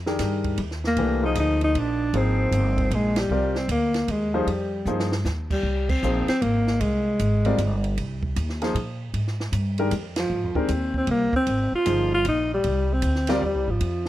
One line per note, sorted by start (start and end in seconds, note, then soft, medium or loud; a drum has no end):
0.00 0.18 F2 medium
0.06 0.56 D#3 medium
0.06 0.56 D4 medium
0.06 0.56 G4 medium
0.06 0.56 G#4 medium
0.06 0.56 A#4 medium
0.06 snare soft
0.19 0.57 G2 medium
0.19 snare soft
0.19 hi-hat pedal medium
0.19 ride medium
0.44 kick medium
0.44 ride soft
0.58 0.96 D#2 medium
0.58 ride medium
0.71 snare soft
0.84 1.22 A#3 loud
0.84 snare soft
0.97 1.35 C2 medium
0.97 1.20 E3 medium
0.97 1.20 A3 medium
0.97 1.20 D4 medium
0.97 1.20 G4 medium
0.97 1.21 B4 medium
0.97 ride medium
1.23 2.06 F3 medium
1.23 2.06 A#3 medium
1.23 2.06 D#4 medium
1.23 1.37 D#4 medium
1.23 2.06 G#4 medium
1.23 2.06 C5 medium
1.35 1.73 D2 medium
1.35 hi-hat pedal medium
1.35 ride medium
1.40 1.61 D#4 loud
1.61 1.80 D#4 loud
1.61 ride soft
1.75 2.13 A#1 medium
1.75 ride medium
1.79 2.19 D4 loud
2.13 2.51 G#1 medium
2.13 3.22 F3 medium
2.13 3.22 A#3 medium
2.13 3.23 D#4 medium
2.13 3.23 G#4 medium
2.13 3.23 C5 medium
2.13 ride medium
2.17 2.96 C4 medium
2.52 2.90 G1 medium
2.52 hi-hat pedal medium
2.52 ride medium
2.78 kick medium
2.78 ride soft
2.91 3.29 A#1 loud
2.91 3.20 G#3 medium
2.91 ride medium
3.16 3.59 G3 medium
3.16 snare medium
3.16 ride medium
3.29 3.68 C2 medium
3.29 3.53 G3 medium
3.29 3.53 C4 medium
3.29 3.54 F4 medium
3.29 3.54 A#4 medium
3.29 3.54 D5 medium
3.55 3.70 C4 medium
3.55 snare soft
3.68 4.07 D2 medium
3.68 4.12 A#3 medium
3.68 hi-hat pedal medium
3.68 ride medium
3.94 snare soft
3.94 ride soft
4.08 4.46 D#2 medium
4.08 4.38 G#3 medium
4.08 ride medium
4.34 4.46 F3 medium
4.34 5.03 G3 medium
4.34 4.46 A#3 medium
4.34 4.46 D#4 medium
4.34 4.46 G#4 medium
4.34 4.47 C5 medium
4.47 4.85 F2 medium
4.47 ride medium
4.85 5.24 G2 medium
4.85 5.09 F3 medium
4.85 5.09 A#3 medium
4.85 5.09 D#4 medium
4.85 5.10 G#4 medium
4.85 5.10 C5 medium
4.85 hi-hat pedal medium
5.00 snare medium
5.12 snare medium
5.25 5.63 D#2 medium
5.25 snare medium
5.25 hi-hat pedal medium
5.51 5.91 G3 medium
5.51 kick medium
5.51 crash medium
5.63 6.01 C2 medium
5.89 6.28 C4 loud
5.89 kick medium
5.89 crash medium
6.03 6.26 A#1 medium
6.03 6.26 F3 medium
6.03 6.26 A#3 medium
6.03 6.26 D#4 soft
6.03 6.26 G#4 medium
6.03 6.26 C5 medium
6.03 hi-hat pedal medium
6.28 6.43 C4 loud
6.28 muted upright bass stroke soft
6.28 snare medium
6.28 ride soft
6.42 6.80 G#1 medium
6.42 6.82 A#3 medium
6.42 ride medium
6.67 snare soft
6.80 7.18 C2 medium
6.80 7.83 G#3 medium
6.80 ride medium
7.19 7.57 G#1 medium
7.19 hi-hat pedal medium
7.19 ride medium
7.45 7.57 G3 medium
7.45 7.58 C4 medium
7.45 7.58 F4 medium
7.45 7.58 A#4 medium
7.45 7.58 D5 medium
7.45 ride soft
7.58 7.96 G1 medium
7.58 hi-hat pedal medium
7.58 ride medium
7.84 ride soft
7.97 8.35 C2 medium
7.97 ride medium
8.23 kick medium
8.36 8.74 D#2 medium
8.36 hi-hat pedal medium
8.36 ride medium
8.49 snare soft
8.62 8.74 F3 medium
8.62 8.74 A#3 medium
8.62 8.74 D#4 medium
8.62 8.74 G#4 medium
8.62 8.75 C5 medium
8.62 snare soft
8.62 ride soft
8.75 9.12 A#2 medium
8.75 ride medium
9.14 9.51 G#2 medium
9.14 ride medium
9.28 snare soft
9.40 snare soft
9.52 9.90 G2 medium
9.52 hi-hat pedal medium
9.52 ride medium
9.78 9.91 D#3 medium
9.78 9.91 G#3 medium
9.78 9.91 D4 medium
9.78 9.91 G4 medium
9.78 9.91 A#4 medium
9.78 ride soft
9.91 10.29 F2 medium
9.91 hi-hat pedal medium
9.91 ride medium
10.16 10.60 F3 medium
10.16 snare medium
10.16 ride medium
10.30 10.44 G#2 medium
10.44 10.56 F2 medium
10.55 10.68 D#2 medium
10.55 10.68 D#3 medium
10.55 10.68 G#3 medium
10.55 10.96 C4 medium
10.55 10.68 D4 medium
10.55 10.68 G4 medium
10.55 10.68 A#4 medium
10.55 kick medium
10.68 11.07 D#2 medium
10.68 hi-hat pedal medium
10.68 ride medium
10.94 11.09 C4 medium
10.94 kick medium
11.07 11.31 C2 medium
11.07 11.33 A#3 loud
11.07 ride medium
11.33 11.71 C4 loud
11.33 muted upright bass stroke soft
11.33 kick medium
11.47 11.70 G#1 medium
11.47 ride medium
11.72 12.10 F4 loud
11.72 muted upright bass stroke soft
11.86 12.24 G1 medium
11.86 12.08 F3 medium
11.86 12.08 A#3 medium
11.86 12.08 D#4 medium
11.86 12.09 G#4 medium
11.86 12.09 C5 medium
11.86 hi-hat pedal medium
11.86 ride medium
12.14 12.26 F4 loud
12.25 12.63 A#1 medium
12.25 12.50 D#4 loud
12.25 hi-hat pedal medium
12.25 ride medium
12.54 12.95 G3 medium
12.64 13.02 C2 medium
12.64 ride medium
12.93 13.33 C4 medium
13.02 13.40 D2 medium
13.02 hi-hat pedal medium
13.02 ride medium
13.15 snare soft
13.27 13.41 G3 medium
13.27 13.41 C4 medium
13.27 13.41 F4 medium
13.27 13.41 A#4 medium
13.27 13.41 D5 loud
13.27 snare soft
13.27 ride medium
13.32 13.44 G3 medium
13.42 13.55 D#2 medium
13.46 13.72 G3 medium
13.55 13.67 C2 medium
13.68 13.80 G#1 medium
13.68 14.09 F3 medium
13.81 14.09 F2 medium
13.81 ride medium
14.06 snare soft